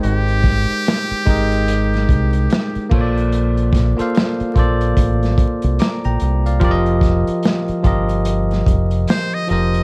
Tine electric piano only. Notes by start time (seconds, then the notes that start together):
Already playing: G#3 D#4 A#4 C5 G5
1.25 G#3 D#4 G4 A#4
1.30 D#5
2.90 A#3 F4 A4 C5
2.95 C#5
3.01 D5
3.97 A#3 F4 A4 C5
4.01 F5
4.54 A#3 F4 A4 C5
4.59 D5
5.80 A#5 D6
6.05 G5 A#5
6.46 D5 F5
6.60 F3 F4 G4 A#4
6.64 D5
6.71 D#5
7.83 F3 F4 G4 A#4
7.87 D#5
9.48 F3 F4 G4 A#4
9.53 C5